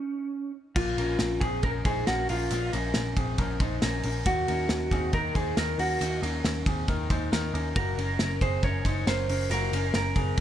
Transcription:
Already playing: C#4
0.76 A#1 A#3 F4, kick, crash
0.98 A#1 C#4 A#4, ride
1.19 A#1, snare, ride
1.40 A#1 C4 G#4, kick, ride
1.63 A#1 C#4 A#4, kick, ride
1.85 A#1 D#4 G#4 C5, kick, ride
2.07 A#1 C#4 F#4 A#4, snare, ride
2.29 A#1 C#4 F4 A#4, open hi-hat, ride
2.51 A#1 A#3 F4, hi-hat pedal, ride
2.73 A#1 C#4 A#4, ride
2.94 A#1, snare, ride
3.17 A#1 C4 G#4, kick, ride
3.38 A#1 C#4 A#4, kick, ride
3.60 A#1 D#4 C5, kick, ride
3.82 A#1 C#4 A#4, snare, ride
4.03 A#1 C#4 A#4, open hi-hat, ride
4.26 D#2 A#3 F#4, kick, hi-hat pedal, ride
4.48 D#2 C#4 A#4, ride
4.69 D#2, snare, ride
4.91 D#2 C4 G#4, kick, ride
5.13 D#2 D#4 A#4, kick, ride
5.35 D#2 D#4 G#4 C5, kick, ride
5.57 D#2 D#4 A#4, snare, ride
5.78 D#2 C#4 F#4 A#4, open hi-hat, ride
6.01 D#2 A#3 F#4, hi-hat pedal, ride
6.22 D#2 C#4 A#4, ride
6.44 D#2, snare, ride
6.66 D#2 C4 G#4, kick, ride
6.88 D#2 D#4 A#4, kick, ride
7.10 D#2 D#4 C5, kick, ride
7.32 D#2 D#4 A#4, snare, ride
7.54 D#2 C#4 A#4, ride
7.76 F#1 A#3 F#4 A#4, kick, ride
7.98 F#1 C#4 A#4, ride
8.19 F#1, snare, ride
8.41 F#1 C4 G#4 C5, kick, ride
8.63 F#1 C#4 A#4 C#5, kick, ride
8.85 F#1 D#4 C5, kick, ride
9.07 F#1 C#4 A#4 C5, snare, ride
9.28 F#1 C#4 A#4, open hi-hat, ride
9.50 F#1 A#3 F#4 A#4, hi-hat pedal, ride
9.72 F#1 C#4 A#4, ride
9.94 F#1 A#4, snare, ride
10.16 F#1 C4 G#4, kick, ride
10.37 ride

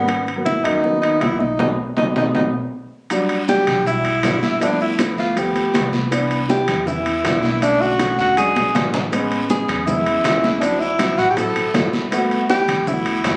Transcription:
Already playing: G#1 B3
0.08 high bongo, high conga, high timbale
0.27 high bongo, high conga, high timbale
0.36 F#3 A#3 B3
0.45 E4, high bongo, high conga
0.64 D#2 F#3 A#3 C#4 D#4, high bongo, high conga, high timbale
0.83 F#3 A#3 B3, high bongo, high conga
1.01 D#4, high conga, high timbale
1.21 B1 E4, high bongo, low bongo, high conga, high timbale, low timbale
1.39 D#4, high bongo, high conga
1.59 B1 F#3 A3 B3 D#4, low bongo, high conga, high timbale
1.97 B1 F#3 A3 B3 D#4, low bongo, high conga, high timbale
2.16 B1 F#3 A3 B3 D#4, low bongo, high conga, high timbale
2.35 B1 F#3 A3 B3 D#4, low bongo, high conga, high timbale
3.10 F#3 G3 D4, high bongo, high conga, high timbale, long guiro, maracas
3.29 high conga, high timbale, maracas
3.48 F#3 G3 D4 G4, high bongo, high conga, low timbale, short guiro, maracas
3.67 B1, low conga, high timbale, short guiro, maracas
3.85 F#3 G3 E4, high bongo, high conga, long guiro, maracas
4.05 high conga, high timbale, maracas
4.23 G1 F#3 G3 D4, high bongo, low bongo, high conga, high timbale, low timbale, short guiro, maracas
4.43 high conga, short guiro, maracas
4.60 F3 A3 B3 D4, high bongo, high conga, high timbale, long guiro, maracas
4.80 E4, high bongo, high conga, maracas
4.99 F3 A3 B3, high bongo, high conga, high timbale, low timbale, short guiro, maracas
5.17 D2 F4, high bongo, high conga, short guiro, maracas
5.35 F3 A3 B3 G4, high bongo, high conga, high timbale, long guiro, maracas
5.55 D2, high bongo, high conga, high timbale, maracas
5.73 C2 F3 A3 B3, high bongo, low bongo, high conga, high timbale, low timbale, short guiro, maracas
5.93 high conga, short guiro, maracas
6.11 E3 B3 D4, high bongo, high conga, high timbale, long guiro, maracas
6.31 high conga, high timbale, maracas
6.48 E3 B3 E4 G4, high bongo, high conga, low timbale, short guiro, maracas
6.68 E2, low conga, high timbale, short guiro, maracas
6.86 E3 B3 E4, high bongo, high conga, low conga, long guiro, maracas
7.06 high conga, high timbale, maracas
7.23 B1 E3 B3 D4, high bongo, low bongo, high conga, high timbale, low timbale, short guiro, maracas
7.43 high conga, short guiro, maracas
7.61 D3 A3 C#4 D4, high bongo, high conga, high timbale, long guiro, maracas
7.81 F#4, high bongo, high conga, maracas
7.98 D3 A3 C#4, high bongo, high conga, high timbale, low timbale, short guiro, maracas
8.18 E2 F#4, high bongo, high conga, short guiro, maracas
8.36 F#3 G#3 D4 G#4, high bongo, high conga, high timbale, long guiro, maracas
8.56 B1, high bongo, high conga, high timbale, maracas
8.74 A1 F#3 G#3 D4, high bongo, low bongo, high conga, high timbale, low timbale, short guiro, maracas
8.94 low conga, short guiro, maracas
9.11 G#3 B3 C#4, high bongo, high conga, high timbale, long guiro, maracas
9.31 high conga, high timbale, maracas
9.48 G#3 B3 C#4 G#4, high bongo, high conga, low timbale, short guiro, maracas
9.68 E2, low conga, high timbale, short guiro, maracas
9.86 G#3 B3 C#4 E4, high bongo, high conga, low conga, long guiro, maracas
10.06 high conga, high timbale, maracas
10.24 D2 G#3 B3 C#4, high bongo, low bongo, high conga, high timbale, low timbale, short guiro, maracas
10.44 high conga, short guiro, maracas
10.61 F#3 C4 D4 E4, high bongo, high conga, high timbale, long guiro, maracas
10.80 E4, high bongo, high conga, maracas
10.98 F#3 C4 E4, high bongo, high conga, high timbale, low timbale, short guiro, maracas
11.18 A1 F#4, high bongo, high conga, short guiro, maracas
11.30 G4
11.36 F#3 C4 E4 A4, high bongo, high conga, high timbale, long guiro, maracas
11.55 A1, high bongo, high conga, high timbale, maracas
11.74 G1 F#3 C4 E4, high bongo, low bongo, high conga, high timbale, low timbale, short guiro, maracas
11.93 high conga, short guiro, maracas
12.11 A3 B3 F#4, high bongo, high conga, high timbale, long guiro, maracas
12.31 high conga, high timbale, maracas
12.49 A3 B3 E4 G4, high bongo, high conga, low timbale, short guiro, maracas
12.68 D2, low conga, high timbale, short guiro, maracas
12.86 A3 B3 E4 F#4, high bongo, high conga, low conga, long guiro, maracas
13.06 high conga, high timbale, maracas
13.23 F2 A3 B3 F#4, high bongo, low bongo, high conga, high timbale, low timbale, short guiro, maracas

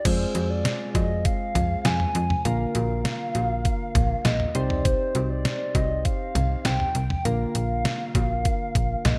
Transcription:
0.05 F2 G#3 C4 F4 G#4 C5, kick, closed hi-hat, crash
0.35 F2, closed hi-hat, cowbell
0.50 D5
0.65 snare, closed hi-hat
0.95 F2 D#5, kick, closed hi-hat, cowbell
1.25 F5, kick, closed hi-hat
1.55 F2, closed hi-hat, mid tom
1.85 F2 G#5, snare, closed hi-hat
2.00 mid tom
2.15 F2, closed hi-hat
2.30 mid tom
2.45 A#1 D3 A#3 F4 A#4 F5, closed hi-hat
2.75 A#1, closed hi-hat, cowbell
3.05 snare, closed hi-hat
3.35 A#1, closed hi-hat, cowbell
3.65 kick, closed hi-hat
3.95 A#1, kick, closed hi-hat, mid tom
4.25 A#1 D#5, snare, closed hi-hat
4.40 mid tom
4.55 C2 C4 D#4 G4 C5 D5, closed hi-hat
4.70 mid tom
4.85 C5, kick, closed hi-hat
5.15 C2, closed hi-hat, cowbell
5.30 D5
5.45 snare, closed hi-hat
5.75 C2 D#5, kick, closed hi-hat, cowbell
6.05 F5, kick, closed hi-hat
6.35 C2, closed hi-hat, mid tom
6.65 C2 G5, snare, closed hi-hat
6.80 mid tom
6.95 C2, closed hi-hat
7.10 mid tom
7.25 A#1 D3 A#3 F4 A#4 F5, closed hi-hat
7.55 A#1, closed hi-hat
7.85 snare, closed hi-hat
8.15 A#1, kick, closed hi-hat, cowbell
8.45 kick, closed hi-hat
8.75 A#1, kick, closed hi-hat
9.05 A#1 D#5, snare, closed hi-hat, mid tom

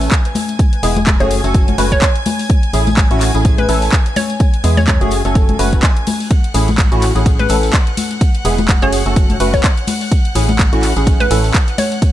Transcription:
Already playing: A2 A3 C#4 E4 A4 G#5 G#6
0.01 open hi-hat, tambourine
0.12 kick, clap, closed hi-hat, tambourine
0.25 closed hi-hat
0.35 open hi-hat, tambourine, high conga
0.48 closed hi-hat, tambourine
0.59 kick, closed hi-hat, tambourine
0.73 closed hi-hat
0.83 E1 G#3 B3 E4 G#4, open hi-hat, tambourine
0.96 closed hi-hat, tambourine, high conga
1.07 kick, clap, closed hi-hat
1.20 F#1 A3 C#4 F#4 G#4 C#5, closed hi-hat
1.31 open hi-hat, tambourine
1.44 F#1 A3 C#4 F#4 A4, closed hi-hat, tambourine
1.54 kick, closed hi-hat, tambourine
1.68 closed hi-hat, high conga
1.78 F#1 A3 C#4 F#4 B4, open hi-hat, tambourine
1.92 C#5, kick, closed hi-hat, tambourine
2.02 kick, clap, closed hi-hat, tambourine
2.16 closed hi-hat
2.26 open hi-hat, tambourine, high conga
2.39 open hi-hat, tambourine
2.50 kick, closed hi-hat, tambourine
2.63 closed hi-hat
2.73 A1 A2 A3 C#4 E4 G#4, open hi-hat, tambourine
2.87 closed hi-hat, tambourine, high conga
2.97 kick, clap, closed hi-hat
3.11 A1 A2 A3 C#4 E4 F#4, closed hi-hat
3.21 clap, open hi-hat, tambourine
3.35 A1 A2 A3 C#4 E4 G#4, closed hi-hat, tambourine
3.45 kick, closed hi-hat, tambourine
3.58 B4, closed hi-hat, high conga
3.69 A1 A2 A3 C#4 E4 A4, open hi-hat, tambourine
3.82 open hi-hat, tambourine
3.92 kick, clap, closed hi-hat, tambourine
4.06 closed hi-hat
4.16 C#5, open hi-hat, tambourine, high conga
4.30 closed hi-hat, tambourine
4.40 kick, closed hi-hat, tambourine
4.54 closed hi-hat
4.64 E2 G#3 B3 E4 G#4, open hi-hat, tambourine
4.77 C#5, closed hi-hat, tambourine, high conga
4.88 C#5, kick, clap, closed hi-hat, tambourine
5.01 F#1 A3 C#4 F#4 G#4, closed hi-hat
5.11 open hi-hat, tambourine
5.25 F#1 A3 C#4 F#4 A4, closed hi-hat, tambourine
5.35 kick, closed hi-hat, tambourine
5.49 closed hi-hat, high conga
5.59 F#1 A3 C#4 F#4 B4, open hi-hat, tambourine
5.73 kick, closed hi-hat, tambourine
5.83 kick, clap, closed hi-hat, tambourine
5.97 closed hi-hat
6.07 open hi-hat, tambourine, high conga
6.20 open hi-hat, tambourine
6.31 F#5 F#6, kick, closed hi-hat, ride, tambourine
6.44 closed hi-hat
6.54 A1 A2 A3 C#4 E4 G#4, open hi-hat, ride, tambourine
6.68 closed hi-hat, tambourine, high conga
6.78 kick, clap, closed hi-hat, ride
6.92 A1 A2 A3 C#4 E4 F#4, closed hi-hat
7.02 clap, open hi-hat, ride, tambourine
7.15 A1 A2 A3 C#4 E4 G#4, closed hi-hat, tambourine
7.26 kick, closed hi-hat, ride, tambourine
7.39 B4, closed hi-hat, high conga
7.49 A1 A2 A3 C#4 E4 A4, open hi-hat, ride, tambourine
7.63 open hi-hat, tambourine
7.73 kick, clap, closed hi-hat, ride, tambourine
7.87 closed hi-hat
7.97 open hi-hat, ride, tambourine, high conga
8.10 closed hi-hat, tambourine
8.21 kick, closed hi-hat, ride, tambourine
8.35 closed hi-hat
8.45 E1 G#3 B3 E4 G#4, open hi-hat, ride, tambourine
8.58 closed hi-hat, tambourine, high conga
8.69 kick, clap, closed hi-hat, ride
8.82 F#1 A3 C#4 F#4 G#4 C#5, closed hi-hat
8.92 open hi-hat, ride, tambourine
9.06 F#1 A3 C#4 F#4 A4, closed hi-hat, tambourine
9.16 kick, closed hi-hat, ride, tambourine
9.29 closed hi-hat, high conga
9.40 F#1 A3 C#4 F#4 B4, open hi-hat, ride, tambourine
9.54 C#5, kick, closed hi-hat, tambourine
9.63 kick, clap, closed hi-hat, ride, tambourine
9.77 closed hi-hat
9.87 open hi-hat, ride, tambourine, high conga
10.01 open hi-hat, tambourine
10.12 kick, closed hi-hat, ride, tambourine
10.25 closed hi-hat
10.35 A1 A2 A3 C#4 E4 G#4, open hi-hat, ride, tambourine
10.49 closed hi-hat, tambourine, high conga
10.59 kick, clap, closed hi-hat, ride
10.73 A1 A2 A3 C#4 E4 F#4, closed hi-hat
10.83 clap, open hi-hat, ride, tambourine
10.96 A1 A2 A3 C#4 E4 G#4, closed hi-hat, tambourine
11.06 kick, closed hi-hat, ride, tambourine
11.20 B4, closed hi-hat, high conga
11.31 A1 A2 A3 C#4 E4 A4, open hi-hat, ride, tambourine
11.44 open hi-hat, tambourine
11.54 kick, clap, closed hi-hat, ride, tambourine
11.68 closed hi-hat
11.78 C#5, open hi-hat, ride, tambourine, high conga
11.92 closed hi-hat, tambourine
12.02 kick, closed hi-hat, ride, tambourine

